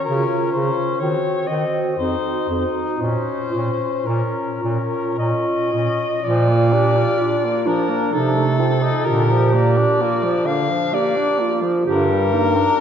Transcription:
0.05 bass clarinet C#3, tenor saxophone C#4, clarinet F4, soprano saxophone A#4
0.52 bass clarinet C#3, tenor saxophone C#4, clarinet F4, soprano saxophone C5
0.99 bass clarinet D#3, tenor saxophone C4, clarinet F#4, soprano saxophone C#5
1.47 bass clarinet D#3, tenor saxophone C4, clarinet F#4, soprano saxophone D#5
1.96 bass clarinet F2, tenor saxophone D#4, clarinet F#4, soprano saxophone C5
2.48 bass clarinet F2, tenor saxophone D#4, clarinet F#4
2.98 bass clarinet A#2, tenor saxophone C#4, clarinet F4, soprano saxophone C5
3.52 bass clarinet A#2, tenor saxophone C#4, clarinet F4
4.06 bass clarinet A#2, tenor saxophone C#4, clarinet F4, soprano saxophone A#4
4.62 bass clarinet A#2, tenor saxophone C#4, clarinet F4
5.17 bass clarinet A#2, tenor saxophone C#4, clarinet F4, soprano saxophone D#5
5.72 bass clarinet A#2, tenor saxophone C#4, clarinet F4
6.22 bass clarinet A#2, tenor saxophone F3, clarinet F4, soprano saxophone D5
6.48 tenor saxophone A#3
6.73 tenor saxophone D4, clarinet G4
6.96 tenor saxophone F4
7.18 tenor saxophone D4, clarinet F4
7.45 tenor saxophone A#3
7.66 tenor saxophone F3, clarinet D4, soprano saxophone A#4
7.89 tenor saxophone A#3
8.13 bass clarinet C3, tenor saxophone F3, clarinet D#4, soprano saxophone A4
8.36 tenor saxophone A3
8.59 tenor saxophone C4, clarinet F4
8.82 tenor saxophone D#4
9.05 bass clarinet A#2, tenor saxophone D3, clarinet G4, soprano saxophone A#4
9.31 tenor saxophone F3
9.53 tenor saxophone A#3, soprano saxophone D5
9.77 tenor saxophone D4
10.01 tenor saxophone A#3, clarinet F4
10.24 tenor saxophone F3
10.46 tenor saxophone D3, clarinet D4, soprano saxophone F5
10.70 tenor saxophone F3
10.93 tenor saxophone A#3, clarinet G4, soprano saxophone D5
11.16 tenor saxophone D4
11.39 tenor saxophone A#3, clarinet F4
11.62 tenor saxophone F3
11.86 bass clarinet G2, tenor saxophone D3, clarinet G4, soprano saxophone A#4
12.10 tenor saxophone G3
12.33 tenor saxophone A#3, clarinet D#4
12.57 tenor saxophone D4

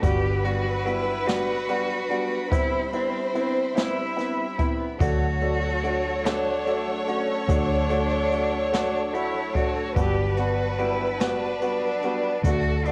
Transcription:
Already playing: clean electric guitar A3 D4
0.02 fingered electric bass G1, clean electric guitar F#3, grand piano G3 B3 F#4, string section D4 F#5 B5, cello G4, violin section B4, kick, closed hi-hat
0.23 clean electric guitar F#3
0.43 grand piano G3 B3 F#4, clean electric guitar B3, cello F#4, closed hi-hat
0.64 clean electric guitar F#3
0.84 grand piano G3 B3 F#4, clean electric guitar D4, cello E4, closed hi-hat
1.05 clean electric guitar B3
1.26 clean electric guitar F#3, grand piano G3 B3 F#4, cello F#4, snare, closed hi-hat
1.47 clean electric guitar F#3
1.68 grand piano G3 B3 F#4, clean electric guitar B3, closed hi-hat
1.88 clean electric guitar F#3
2.09 grand piano G3 B3 F#4, clean electric guitar D4, closed hi-hat
2.29 clean electric guitar B3
2.46 clean electric guitar G3, violin section B4
2.51 fingered electric bass C2, grand piano B3 C4 E4, cello E4, violin section C5, string section C5 E5, kick, closed hi-hat
2.70 clean electric guitar G3
2.92 grand piano B3 C4 E4, cello C4, closed hi-hat
3.12 clean electric guitar G3
3.33 grand piano B3 C4 E4, cello C4, clean electric guitar E4, closed hi-hat
3.74 clean electric guitar G3, grand piano B3 C4 E4, cello E4, snare, closed hi-hat
3.95 clean electric guitar G3
4.16 grand piano B3 C4 E4, snare, closed hi-hat
4.37 clean electric guitar G3
4.58 grand piano B3 C4 E4, clean electric guitar E4, kick, closed hi-hat
4.78 clean electric guitar B3
4.99 fingered electric bass D2, clean electric guitar F#3, grand piano A3 D4 F#4, cello F#4, string section A4 F#5 A5, violin section C#5, kick, closed hi-hat
5.20 clean electric guitar F#3
5.41 clean electric guitar A3, grand piano A3 D4 F#4, closed hi-hat
5.61 clean electric guitar F#3
5.82 grand piano A3 D4 F#4, clean electric guitar D4, closed hi-hat
6.03 clean electric guitar A3
6.24 clean electric guitar F#3, grand piano A3 D4 F#4, cello D4, snare, closed hi-hat
6.45 clean electric guitar F#3
6.66 clean electric guitar A3, grand piano A3 D4 F#4, closed hi-hat
6.87 clean electric guitar F#3
7.04 grand piano A3, cello D4
7.08 cello C#4, grand piano D4 F#4, closed hi-hat
7.28 clean electric guitar A3
7.48 fingered electric bass D2, clean electric guitar F#3, grand piano A3 D4 F#4, cello D4, kick, closed hi-hat
7.70 clean electric guitar F#3
7.90 grand piano A3 D4 F#4, clean electric guitar A3, closed hi-hat
8.11 clean electric guitar F#3
8.31 grand piano A3 D4 F#4, clean electric guitar D4, closed hi-hat
8.52 clean electric guitar A3
8.72 clean electric guitar F#3, grand piano A3 D4 F#4, cello D4, snare, closed hi-hat
8.93 clean electric guitar F#3
9.13 grand piano A3 D4 F#4, clean electric guitar A3, cello E4, closed hi-hat
9.34 clean electric guitar F#3
9.54 grand piano A3 D4 F#4, clean electric guitar D4, cello F#4, kick, closed hi-hat
9.75 clean electric guitar A3
9.95 fingered electric bass G1, clean electric guitar F#3, grand piano G3 B3 F#4, cello G4, violin section B4, string section B4 D5 F#5, kick, closed hi-hat
10.17 clean electric guitar F#3
10.37 grand piano G3 B3 F#4, clean electric guitar B3, cello F#4, closed hi-hat
10.57 clean electric guitar F#3
10.78 grand piano G3 B3 F#4, clean electric guitar D4, cello E4, closed hi-hat
10.99 clean electric guitar B3
11.20 clean electric guitar F#3, grand piano G3 B3 F#4, cello D4, snare, closed hi-hat
11.40 clean electric guitar F#3
11.60 grand piano G3 B3 F#4, clean electric guitar B3, closed hi-hat
11.81 clean electric guitar F#3
12.01 grand piano G3 B3 F#4, clean electric guitar D4, closed hi-hat
12.22 clean electric guitar B3
12.43 fingered electric bass D2, clean electric guitar F#3, grand piano A3 D4 F#4, cello F#4, violin section A4, string section A4 D5 F#5, kick, closed hi-hat
12.64 clean electric guitar F#3
12.85 clean electric guitar A3, grand piano A3 D4 F#4, cello D4, closed hi-hat

